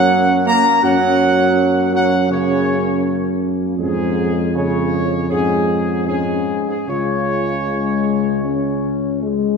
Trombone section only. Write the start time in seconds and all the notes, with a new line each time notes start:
Already playing: F#3
0.46 A#3
0.83 F#3
1.93 F#3
2.30 C#3
3.79 G#2
4.55 C#3
5.30 G#2
6.07 G#2
6.68 G#2
6.88 C#3